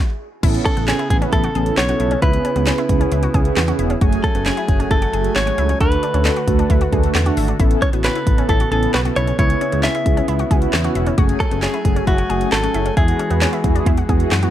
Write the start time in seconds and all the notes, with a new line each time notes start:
0.43 A1 C#3 B3 C#4 E4 A4, kick, closed hi-hat, crash
0.54 closed hi-hat
0.66 C#4 A4, kick, closed hi-hat
0.77 A1 B3 C#4 E4 A4, closed hi-hat
0.88 C#4 G#4, snare, clap, closed hi-hat
0.99 E4, closed hi-hat
1.10 A1 B3 C#4 E4 G#4 B4, kick, closed hi-hat
1.22 C#4, closed hi-hat
1.33 A1 E4 A4, kick, closed hi-hat
1.44 F#4, closed hi-hat
1.55 A1 B3 C#4 E4 G#4 A4, closed hi-hat
1.66 closed hi-hat
1.77 B1 F#4 C#5, snare, clap, closed hi-hat
1.89 B3 C#4 E4 F#4 A4, closed hi-hat
2.00 B1 E4, closed hi-hat
2.11 C#4, closed hi-hat
2.22 C#2 B3 C#4 E4 G#4 B4, kick, closed hi-hat
2.33 closed hi-hat
2.45 C#4, closed hi-hat
2.56 C#2 B3 C#4 E4 G#4, closed hi-hat
2.67 C#4, snare, clap, closed hi-hat
2.78 E4, closed hi-hat
2.89 C#2 B3 C#4 E4 G#4, kick, closed hi-hat
3.01 C#4, closed hi-hat
3.12 C#2 E4, closed hi-hat
3.23 F#4, closed hi-hat
3.34 C#2 B3 C#4 E4 G#4, kick, closed hi-hat
3.45 closed hi-hat
3.56 E2 F#4, snare, clap, closed hi-hat
3.68 B3 C#4 E4 F#4 G#4, closed hi-hat
3.79 E1 E4, closed hi-hat
3.90 C#4, closed hi-hat
4.01 F#1 F#3 A3 C#4 F#4 G#4 G#5, kick, closed hi-hat
4.12 closed hi-hat
4.24 C#4 A4, kick, closed hi-hat
4.35 F#1 A3 B3 C#4 F#4 G#4, closed hi-hat
4.46 C#4 G#4, snare, clap, closed hi-hat
4.57 E4, closed hi-hat
4.68 F#1 A3 C#4 F#4 G#4, kick, closed hi-hat
4.80 C#4, closed hi-hat
4.91 F#1 E4 A4, kick, closed hi-hat
5.02 F#4, closed hi-hat
5.13 F#1 A3 C#4 F#4 G#4, closed hi-hat
5.25 closed hi-hat
5.36 G#1 F#4 C#5, snare, clap, closed hi-hat
5.47 A3 C#4 F#4 G#4, closed hi-hat
5.58 C#2 E4, closed hi-hat
5.69 C#4, closed hi-hat
5.80 D2 D3 A3 D4 F#4 A4 B4, kick, closed hi-hat
5.92 closed hi-hat
6.03 D4, closed hi-hat
6.14 D2 A3 C#4 D4 F#4 A4, closed hi-hat
6.25 D4, snare, clap, closed hi-hat
6.36 F#4, closed hi-hat
6.48 D2 A3 D4 F#4 A4, kick, closed hi-hat
6.59 D4, closed hi-hat
6.70 D2 E4, kick, closed hi-hat
6.81 F#4, closed hi-hat
6.92 D2 A3 D4 F#4 G#4 A4, kick, closed hi-hat
7.04 closed hi-hat
7.15 E2 F#4, snare, clap, closed hi-hat
7.26 A3 D4 F#4 A4, closed hi-hat
7.37 G#1 E4, open hi-hat
7.48 D4, closed hi-hat
7.60 A1 C#3 B3 C#4 E4 A4, kick, closed hi-hat
7.71 closed hi-hat
7.82 C#4 C#5, kick, closed hi-hat
7.93 A1 B3 C#4 E4 F#4, closed hi-hat
8.04 C#4 B4, snare, clap, closed hi-hat
8.15 E4, closed hi-hat
8.27 A1 B3 C#4 E4 A4, kick, closed hi-hat
8.38 C#4, closed hi-hat
8.49 A1 E4 A4, kick, closed hi-hat
8.60 F#4, closed hi-hat
8.72 A1 B3 C#4 E4 G#4 A4, closed hi-hat
8.83 closed hi-hat
8.94 B1 F#4 B4, snare, clap, closed hi-hat
9.05 B3 C#4 E4 F#4 A4, closed hi-hat
9.16 B1 E4 C#5, closed hi-hat
9.27 C#4, closed hi-hat
9.39 C#2 C#3 B3 C#4 E4 G#4 C#5, kick, closed hi-hat
9.50 closed hi-hat
9.61 C#4, closed hi-hat
9.72 C#2 B3 C#4 E4 G#4, closed hi-hat
9.83 C#4 E5, snare, clap, closed hi-hat
9.95 E4, closed hi-hat
10.06 C#2 B3 C#4 E4 G#4, kick, closed hi-hat
10.17 C#4, closed hi-hat
10.28 C#2 E4, closed hi-hat
10.39 F#4, closed hi-hat
10.51 C#2 B3 C#4 E4 F#4 G#4, kick, closed hi-hat
10.62 closed hi-hat
10.73 E2 F#4, snare, clap, closed hi-hat
10.84 B3 C#4 E4 F#4, closed hi-hat
10.95 E1 E4, closed hi-hat
11.06 C#4, closed hi-hat
11.18 F#1 F#3 A3 C#4 F#4 G#4 G#5, kick, closed hi-hat
11.29 closed hi-hat
11.40 C#4 A4, kick, closed hi-hat
11.51 F#1 A3 B3 C#4 F#4 G#4, closed hi-hat
11.62 C#4 G#4, snare, clap, closed hi-hat
11.74 E4, closed hi-hat
11.85 F#1 A3 C#4 F#4 G#4, kick, closed hi-hat
11.96 C#4, closed hi-hat
12.07 F#1 E4 F#4, kick, closed hi-hat
12.18 F#4, closed hi-hat
12.30 F#1 A3 C#4 F#4 G#4, closed hi-hat
12.41 closed hi-hat
12.52 G#1 F#4 A4, snare, clap, closed hi-hat
12.63 A3 C#4 F#4 G#4, closed hi-hat
12.74 F#1 E4, closed hi-hat
12.86 C#4, closed hi-hat
12.97 E2 E3 G#3 B3 E4 F#4 G#4, kick, closed hi-hat
13.08 closed hi-hat
13.19 C#4, closed hi-hat
13.30 E2 B3 E4 F#4 B4, closed hi-hat
13.42 C#4, snare, clap, closed hi-hat
13.53 E4, closed hi-hat
13.64 E2 B3 E4 F#4 G#4, kick, closed hi-hat
13.75 D4, closed hi-hat
13.86 E2 E4, kick, closed hi-hat
13.97 F#4, closed hi-hat
14.09 E2 B3 E4 F#4 G#4, kick, closed hi-hat
14.20 closed hi-hat
14.31 F#2 F#4, snare, clap, closed hi-hat
14.43 B3 E4 F#4 G#4, closed hi-hat